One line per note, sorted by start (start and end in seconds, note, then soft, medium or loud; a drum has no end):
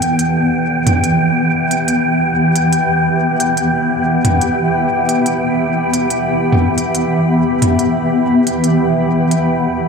0.00 9.88 E3 medium
0.00 9.88 B3 medium
0.00 9.88 G4 medium
0.00 0.52 A4 medium
0.00 0.52 D5 medium
0.00 9.88 E5 medium
0.00 9.49 G5 medium
0.00 0.40 A5 medium
0.00 closed hi-hat soft
0.04 9.88 B5 medium
0.19 closed hi-hat soft
0.87 closed hi-hat soft
0.87 mid tom medium
1.04 closed hi-hat soft
1.71 closed hi-hat soft
1.88 closed hi-hat soft
2.56 closed hi-hat soft
2.73 closed hi-hat soft
3.40 closed hi-hat soft
3.57 closed hi-hat soft
4.25 closed hi-hat soft
4.25 mid tom medium
4.41 closed hi-hat soft
5.09 closed hi-hat soft
5.26 closed hi-hat soft
5.94 closed hi-hat soft
6.10 closed hi-hat soft
6.53 mid tom medium
6.78 closed hi-hat soft
6.95 closed hi-hat soft
7.62 closed hi-hat soft
7.62 mid tom medium
7.79 closed hi-hat soft
8.47 closed hi-hat soft
8.64 closed hi-hat soft
9.31 closed hi-hat soft